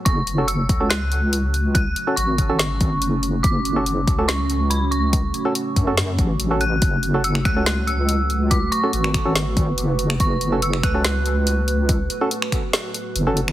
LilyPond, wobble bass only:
\new Staff \with { instrumentName = "Wobble bass" } { \clef bass \time 4/4 \key fis \minor \tempo 4 = 142 fis,,4. cis,2~ cis,8~ | cis,8 r8 gis,,2 fis,,4 | fis,,4. cis,2~ cis,8~ | cis,8 r4 fis,4 a,,4. |
fis,,4. cis,2~ cis,8~ | cis,8 r8 gis,,2 fis,,4 | fis,,4. cis,2~ cis,8~ | cis,8 r2 r8 fis,,4 | }